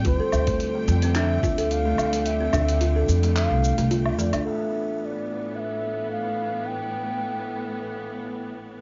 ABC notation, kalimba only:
X:1
M:4/4
L:1/16
Q:"Swing 16ths" 1/4=109
K:Am
V:1 name="Kalimba"
F A z A,2 A,2 C D z F A z A,2 A,- | A, C D z F A z A,2 A, z A, F z A, D | z16 | z16 |]